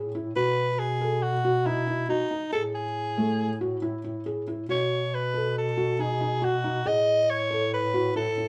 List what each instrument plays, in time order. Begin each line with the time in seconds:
Already playing: bass clarinet A2
0.15 felt piano E4
0.36 bass clarinet B2, felt piano F#4, soprano saxophone B4
0.79 soprano saxophone G#4
1.01 felt piano A4
1.22 soprano saxophone F#4
1.45 felt piano F#4
1.66 felt piano D#4, soprano saxophone E4
1.87 felt piano D#4
2.09 soprano saxophone D#4, felt piano F#4
2.31 felt piano D#4
2.52 bass clarinet A2, felt piano G#4, soprano saxophone A4
2.75 soprano saxophone G#4
3.17 felt piano A3
3.61 felt piano F#4
3.82 felt piano E4
4.04 felt piano E4
4.26 felt piano G#4
4.48 felt piano E4
4.69 bass clarinet B2, felt piano F#4, soprano saxophone C#5
5.14 soprano saxophone B4
5.34 felt piano A4
5.58 soprano saxophone A4
5.77 felt piano F#4
5.99 felt piano D#4, soprano saxophone G#4
6.21 felt piano D#4
6.42 felt piano F#4, soprano saxophone F#4
6.64 felt piano D#4
6.85 bass clarinet A2, felt piano G#4, soprano saxophone D#5
7.30 soprano saxophone C#5
7.50 felt piano A4
7.73 soprano saxophone B4
7.94 felt piano F#4
8.16 felt piano E4, soprano saxophone A4
8.38 felt piano E4